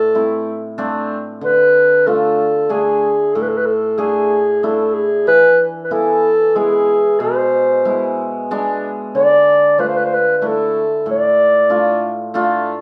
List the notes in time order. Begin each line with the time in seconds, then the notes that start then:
Already playing: A2 A4
0.15 A3 C4 E4
0.78 A3 C4 D4
1.41 D3 B4
2.06 A3 D4 F4 A4
2.69 A3 D4 G#4
3.34 A2 A4
3.42 B4
3.49 A4
3.57 B4
3.66 A4
3.98 A3 D4 G#4
4.63 A3 D4 E4 A4
4.93 G#4
5.27 E3 B4
5.84 B4
5.91 E3 B3 E4 A4
6.55 G#3 B3 E4 G#4
7.20 B2 C5
7.85 B2 G#3 E4
8.51 G#3 B3 D4
9.15 D3 D5
9.78 A3 D4 F4 B4
9.87 C5
9.96 B4
10.04 C5
10.14 B4
10.37 B4
10.42 A3 D4 E4
10.47 A4
11.06 A2
11.11 D5
11.69 A3 D4 F4
12.34 A3 D4 F4